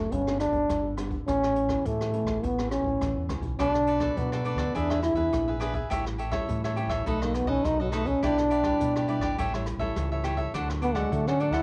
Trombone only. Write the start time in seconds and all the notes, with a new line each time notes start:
Already playing: A3
0.13 C#4
0.40 D4
1.28 C#4
1.86 A3
2.44 B3
2.71 C#4
3.60 D4
4.17 B3
4.75 D4
5.03 E4
7.08 A3
7.23 A#3
7.35 B3
7.49 C#4
7.65 D#4
7.81 F#3
7.93 A3
8.07 C#4
8.24 D4
10.82 B3
10.95 G#3
11.12 A3
11.28 C#4
11.40 D4
11.54 E4